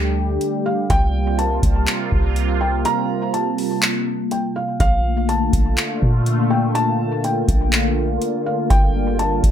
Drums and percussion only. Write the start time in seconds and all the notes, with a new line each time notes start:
0.41 closed hi-hat
0.90 kick, closed hi-hat
1.39 closed hi-hat
1.63 kick, closed hi-hat
1.87 clap, closed hi-hat
2.12 kick
2.36 closed hi-hat
2.85 closed hi-hat
3.34 closed hi-hat
3.58 open hi-hat
3.82 clap, closed hi-hat
4.31 closed hi-hat
4.80 kick, closed hi-hat
5.29 closed hi-hat
5.53 kick, closed hi-hat
5.78 clap, closed hi-hat
6.02 kick
6.26 closed hi-hat
6.75 closed hi-hat
7.24 closed hi-hat
7.48 kick, closed hi-hat
7.73 clap, closed hi-hat
8.22 closed hi-hat
8.70 kick, closed hi-hat
9.19 closed hi-hat
9.43 kick, closed hi-hat